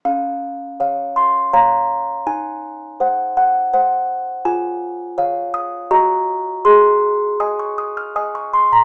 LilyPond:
\new Staff \with { instrumentName = "Music box" } { \time 3/4 \key des \major \tempo 4 = 81 << { f''4. c'''8 bes''4 | aes''4. ges''4. | aes''4. ees'''8 des'''4 | c'''4 ees'''16 des'''16 ees'''16 f'''16 ees'''16 des'''16 c'''16 bes''16 | } \\ { des'4 <des'' f''>4 <des'' f''>4 | ees'4 <c'' ges''>4 <c'' ges''>4 | f'4 <des'' f''>4 <ges' ees'' bes''>4 | aes'4 <ees'' aes''>4 <ees'' aes''>4 | } >> }